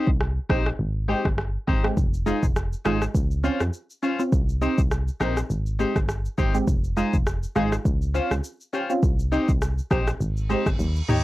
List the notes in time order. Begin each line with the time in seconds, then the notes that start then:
0.08 C2, kick
0.21 cross-stick
0.50 A#1 C4 D#4 G4 C5, kick, cross-stick
0.67 cross-stick
0.79 G#1
1.08 G#3 C4 D#4 G4 C5
1.25 G1, kick, cross-stick
1.38 cross-stick
1.67 G#1 C4 D#4 G4 C5, kick
1.84 G#3 C4 G4, cross-stick
1.97 F1, kick, shaker
2.14 shaker
2.26 G#3 D#4 F4 G#4 C5, shaker
2.43 F1, kick, shaker
2.56 cross-stick, shaker
2.73 shaker
2.85 G#1 G#3 D#4 F4 G#4 C5, cross-stick, shaker
3.02 cross-stick, shaker
3.15 C#2, kick, shaker
3.31 shaker
3.44 C4 C#4 F4 C5, shaker
3.61 F2, cross-stick, shaker
3.73 shaker
3.90 shaker
4.03 C#4 F4 C5, shaker
4.19 C4 C#4 F4, shaker
4.32 C2, kick, shaker
4.49 shaker
4.61 C4 D#4 G4 C5, shaker
4.78 C2, kick, shaker
4.91 cross-stick, shaker
5.08 shaker
5.20 A#1 C4 D#4 G4 A#4 C5, cross-stick, shaker
5.37 cross-stick, shaker
5.50 G#1, shaker
5.66 shaker
5.79 G#3 C4 D#4 G4 C5, shaker
5.96 G1, kick, cross-stick, shaker
6.09 cross-stick, shaker
6.25 shaker
6.38 G#1 C4 D#4 G4 C5, kick, shaker
6.54 G#3 C4 G4, shaker
6.67 F1, kick, shaker
6.84 shaker
6.96 G#3 D#4 F4 G#4 C5, shaker
7.13 F1, kick, shaker
7.26 cross-stick, shaker
7.43 shaker
7.55 G#1 G#3 D#4 F4 G#4 C5, cross-stick, shaker
7.72 cross-stick, shaker
7.85 C#2, kick, shaker
8.02 shaker
8.14 C4 C#4 F4 C5, shaker
8.31 C#2, cross-stick, shaker
8.44 shaker
8.61 shaker
8.73 C#4 F4 G4 C5, shaker
8.90 C4 C#4 F4, shaker
9.03 C2, kick, shaker
9.19 shaker
9.32 C4 D#4 G4 C5, shaker
9.49 C2, kick, shaker
9.62 cross-stick, shaker
9.78 shaker
9.91 A#1 C4 D#4 G4 C5, kick, cross-stick, shaker
10.07 cross-stick, shaker
10.20 G#1, reverse cymbal, shaker
10.37 shaker
10.49 G#3 C4 D#4 G4 C5, shaker
10.66 G1, kick, cross-stick, shaker
10.79 D#2, high tom, shaker
10.96 shaker
11.08 D#2 D#4 G4 C#5, mid tom, shaker